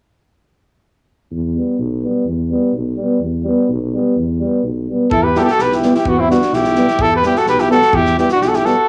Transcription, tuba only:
1.31 E2
1.78 B1
2.26 E2
2.73 B1
3.20 E2
3.69 B1
4.16 E2
4.63 B1
5.12 E2
5.60 B1
6.06 E2
6.53 B1
6.99 E2
7.47 B1
7.93 E2
8.40 B1

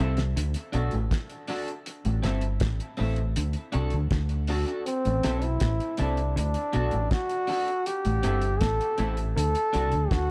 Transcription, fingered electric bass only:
0.00 C2
0.37 D2
0.75 B1
0.94 A1
2.06 A1
2.25 G1
2.62 A1
3.01 A1
3.38 D2
3.75 C2
3.94 D2
4.11 D2
5.07 A1
5.26 B1
5.62 A1
6.01 C2
6.38 D2
6.76 B1
6.95 A1
8.06 A1
8.25 G1
8.62 A1
9.00 A1
9.37 D2
9.76 C2
9.95 D2
10.12 D2

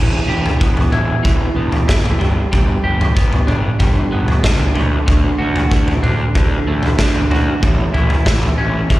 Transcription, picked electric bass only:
Already playing: E1
0.28 E1
0.61 E1
0.92 E1
1.25 E1
1.56 E1
1.89 F#1
2.20 G1
2.53 G1
2.84 G1
3.17 G1
3.47 G1
3.80 G1
4.11 G1
4.44 C#2
4.76 D2
5.08 D2
5.40 D2
5.71 D2
6.03 D2
6.35 D2
6.67 D2
6.99 D2
7.30 D2
7.63 A1
7.93 A1
8.26 A1
8.58 A1
8.90 A1

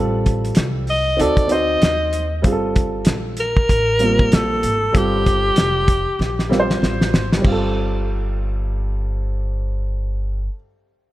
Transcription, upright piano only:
Already playing: G3 C4 F4 A4
1.17 C4 D#4 F#4 A4
1.48 C4 D#4 F#4
1.52 C5
2.42 G3 C4 F4 G#4
2.52 A4
3.99 G3 A#3 C4 F4
4.92 G3 C4 F4 A4
6.49 G3 C4 F4 A#4
6.60 C5
7.37 G3
7.42 C4
7.47 F4
7.52 A4

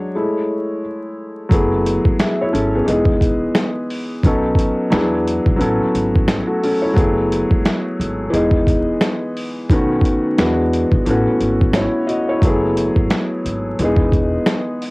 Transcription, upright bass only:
1.51 F#1
2.06 G#1
2.54 G#1
2.88 E1
4.24 B1
4.92 E2
5.47 B1
5.61 A1
5.80 muted upright bass stroke
5.95 G#1
6.97 F#1
7.51 G#1
8.00 G#1
8.33 E1
9.70 B1
10.38 E2
10.92 B1
11.07 A1
11.27 muted upright bass stroke
11.41 G#1
12.42 F#1
12.97 G#1
13.45 G#1
13.79 E1

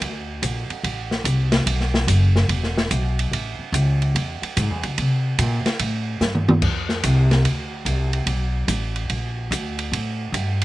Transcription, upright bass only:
0.01 D2
0.42 A#1
0.70 muted upright bass stroke
0.83 A1
1.24 C2
1.66 B1
2.07 F#1
2.49 E1
2.91 B1
3.31 A1
3.59 muted upright bass stroke
3.72 C#2
4.15 E2
4.42 muted upright bass stroke
4.57 G#2
4.70 E2
4.84 C#2
4.98 C3
5.39 A#2
5.66 muted upright bass stroke
5.80 A2
6.21 G2
6.62 F2
7.04 C2
7.44 D2
7.85 C2
8.26 B1
8.68 A1
9.10 A#1
9.51 D2
9.92 A2
10.32 G2

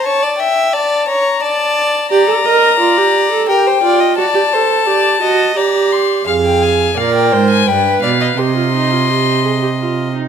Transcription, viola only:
2.11 G4
2.28 A4
2.45 A#4
2.80 F4
2.97 G4
3.31 A4
3.48 G4
3.82 F4
4.17 F#4
4.34 G4
4.53 A4
4.87 G4
5.22 F#4
5.56 G4
6.27 G#4
6.97 A#4
7.68 B4
8.39 G4
8.56 F4
8.74 D#4
8.92 F4
9.09 G4
9.45 G#4
9.62 G4
9.79 F4
10.15 D#4

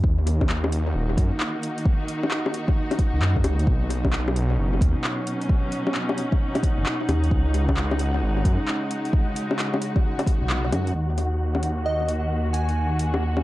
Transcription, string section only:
0.04 D#3
0.12 A#3
0.39 D#4
0.70 F#4
3.67 B2
3.90 F#3
4.53 C#4
4.89 D#4
7.31 C#3
7.64 G#3
7.84 F#4
10.94 D#3
11.37 A#3

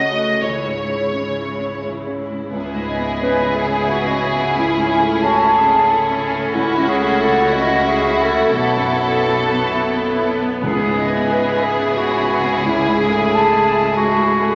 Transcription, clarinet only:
3.23 B4
3.56 G#4
3.90 F#4
4.58 E4
5.24 F#4
5.58 G#4
5.91 A4
6.54 E4
6.88 G#4
7.21 A4
7.54 F#4
7.88 G#4
8.22 A4
8.56 F#4
10.63 G#4
11.31 B4
11.64 G#4
11.97 F#4
12.65 E4
12.97 G#4
13.96 F#4

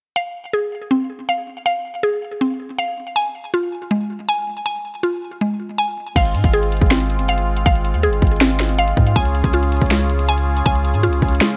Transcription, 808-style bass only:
6.16 G#1
6.35 G#2
6.44 G#1
6.82 G#1
7.19 G1
7.42 G#1
7.66 G#1
7.94 D#2
8.08 G#1
8.22 G#1
8.97 G#2
9.16 C#2
9.44 C#2
9.82 C#2
10.66 C#2
10.94 G#2
11.08 C#2
11.22 C#2

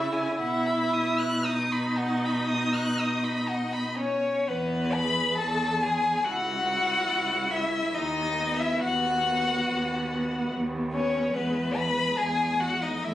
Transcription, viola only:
Already playing: E4
0.37 E4
1.44 D#4
4.95 G#4
5.84 G#4
6.27 E4
6.69 E4
7.52 E4
8.39 B3
9.25 B3
10.11 B3
10.93 B3
11.34 G#3
11.76 G#3
12.61 G#3
13.03 A3

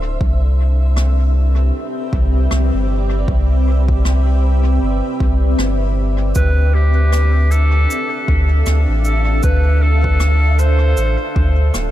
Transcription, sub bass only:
Already playing: D1
0.21 C2
2.13 C2
2.51 C2
2.74 G1
3.28 C2
4.82 G1
5.20 C2
5.59 G1
6.36 D2
8.28 D2
8.67 D2
8.89 A1
9.44 D2
10.97 A1
11.36 D2
11.74 D1

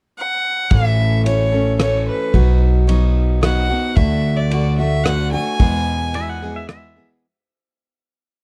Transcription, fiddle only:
0.18 F#5
0.71 E5
1.26 C#5
1.81 C#5
2.09 B4
3.44 F#5
3.96 E5
4.36 D5
4.77 E5
5.04 F#5
5.32 G#5

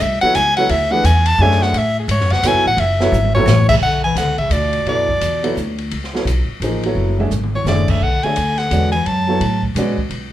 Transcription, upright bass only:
0.00 C2
0.22 muted upright bass stroke
0.35 C#2
0.69 D2
1.04 E2
1.38 F#2
1.73 A2
2.08 G#2
2.20 F#2
2.32 C#2
2.43 F#2
2.54 C#2
2.66 A1
2.77 F#1
3.12 G#1
3.46 A1
3.81 B1
4.15 C#2
4.50 D2
4.85 F#2
5.21 E2
5.56 D2
5.92 C#2
6.25 B1
6.48 muted upright bass stroke
6.60 A1
6.95 F#1
7.31 G#1
7.65 F#1
8.01 B1
8.24 muted upright bass stroke
8.37 D2
8.71 E2
9.06 F#2
9.40 A2
9.74 B2
9.98 muted upright bass stroke
10.09 B1

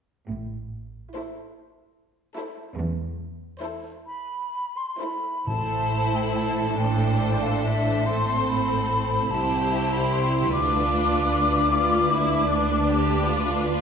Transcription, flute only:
4.07 B5
4.77 C6
5.00 B5
5.47 A5
6.16 G5
6.37 A5
6.79 G5
7.43 F5
7.64 E5
8.06 C6
8.48 B5
9.31 A5
9.93 B5
10.12 C6
10.52 D6

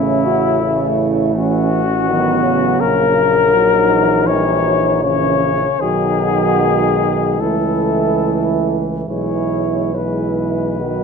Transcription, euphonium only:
Already playing: C#3
0.62 C#3
1.35 E3
2.06 D#3
2.42 C#3
3.52 F#3
4.27 E3
5.04 C#3
5.80 D#3
7.41 E3
9.09 E3
9.97 E3
10.81 D#3

